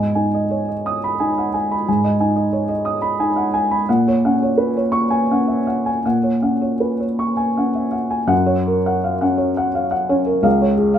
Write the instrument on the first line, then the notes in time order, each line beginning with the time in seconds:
felt piano
Already playing: G#2 D#5 G#5
0.15 D#4 G#5
0.34 D#5
0.51 C#5
0.68 D#5
0.86 D#6
1.04 B5
1.20 D#4 G#5
1.38 F#5
1.54 G#5
1.71 B5
1.88 G#2 G#5
2.04 D#5
2.20 D#4 G#5
2.36 D#5
2.53 C#5
2.69 D#5
2.85 D#6
3.02 B5
3.20 D#4 G#5
3.36 F#5
3.54 G#5
3.71 B5
3.89 A#2 F#5
4.08 C#5
4.25 C#4 F#5
4.43 C#5
4.58 B4
4.77 C#5
4.92 C#6
5.10 G#5
5.31 C#4 F#5
5.48 E5
5.67 F#5
5.86 G#5
6.05 A#2 F#5
6.23 C#5
6.42 C#4 F#5
6.61 C#5
6.80 B4
7.00 C#5
7.19 C#6
7.37 G#5
7.57 C#4 F#5
7.75 E5
7.91 F#5
8.10 G#5
8.27 F#2 F#5
8.46 C#5
8.67 A#4
8.86 F#5
9.04 F5
9.21 C#4 F#5
9.38 C#5
9.57 F#5
9.75 F5
9.91 F#5
10.09 C#4 C#5
10.26 A#4
10.43 C#2 F5
10.61 C#5
10.77 G#4
10.94 F5